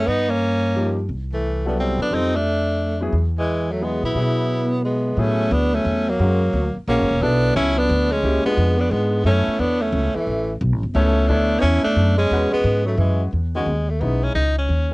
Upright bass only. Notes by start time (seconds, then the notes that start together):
0.08 G2
1.09 C2
1.98 C3
2.11 F2
3.12 E2
4.03 B2
4.15 B2
5.17 A2
5.51 D2
5.85 E2
6.19 F#2
6.53 D2
6.76 muted upright bass stroke
6.87 A#1
6.99 F#1
7.10 E1
7.21 B1
7.56 C#2
7.89 D2
8.23 C#2
8.45 muted upright bass stroke
8.57 F2
8.91 G#2
9.24 F#2
9.47 muted upright bass stroke
9.59 E2
9.93 C#2
10.15 muted upright bass stroke
10.27 A1
10.61 B1
10.72 A1
10.83 G1
10.95 C#2
11.29 D2
11.63 E2
11.85 muted upright bass stroke
11.96 F#2
12.31 E2
12.53 muted upright bass stroke
12.64 G#2
12.97 F#2
13.33 E2
13.66 D#2
14.01 B1
14.34 C#2
14.69 D#2